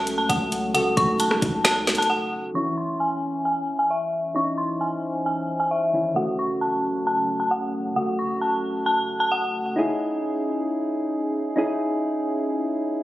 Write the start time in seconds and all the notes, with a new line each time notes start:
Already playing: C#2 C#3 F#3 A3 C#4 F#4 A4 A5
0.07 closed hi-hat
0.18 A5
0.29 C#2 F#5, kick, closed hi-hat
0.52 closed hi-hat
0.74 C#3 A3 D#4 F#4 A4 F#5, closed hi-hat
0.97 C#2 C#6, kick, closed hi-hat
1.20 A5, closed hi-hat
1.31 cross-stick
1.42 C#2, kick, closed hi-hat
1.64 A5, snare, closed hi-hat
1.87 snare, closed hi-hat
1.95 A5, closed hi-hat
2.02 closed hi-hat
2.10 F#5
2.54 E3 C#4 E4 C#6
2.78 C6
3.00 G#5
3.45 G#5
3.79 G#5
3.90 E5
4.34 C#4 D#4 E4 C5 C#6
4.58 C6
4.81 G#5
5.26 G#5
5.60 G#5
5.71 E5
5.93 D#3 C#4 E4
6.14 C#3 F#3 A3 C#4 F#4 F#5
6.39 C#6
6.61 A5
7.07 A5
7.40 A5
7.51 F#5
7.96 C#3 A3 F#4 F#5
8.19 C#6
8.41 A5
8.86 A5
9.20 A5
9.32 F#5
9.76 C#4 D#4 E4 G#4
11.56 C#4 D#4 E4 G#4